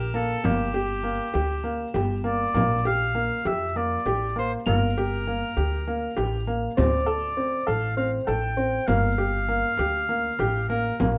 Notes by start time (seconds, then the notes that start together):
Already playing: A#1 A#4 E7
0.14 A#3 A4, frame drum
0.44 G1 A#3 G4, frame drum
0.74 G4, frame drum
1.03 A#3
1.34 D2 G4, frame drum
1.64 A#3
1.94 G1 G4, frame drum
2.24 A#3 D5, frame drum
2.54 A#1 A#3, frame drum
2.85 G4 F5, frame drum
3.15 A#3
3.45 F2 G4 E5, frame drum
3.76 A#3 D5
4.05 A1 G4, frame drum
4.36 A#3 C5, frame drum
4.66 G1 A#3 A#4 F7, frame drum
4.98 G4
5.27 A#3
5.57 D2 G4, frame drum
5.88 A#3, frame drum
6.17 A1 G4, frame drum
6.47 A#3
6.77 D2 C4 D5, frame drum
7.06 A4, frame drum
7.37 C4
7.67 A1 A4 F5, frame drum
7.97 C4 F5
8.27 A1 A4 G5, frame drum
8.57 C4, frame drum
8.87 G1 A#3 F5, frame drum
9.18 G4, frame drum
9.48 A#3
9.78 D2 G4, frame drum
10.09 A#3
10.39 A1 G4, frame drum
10.69 A#3 A#4, frame drum
11.00 A#1 A#3, frame drum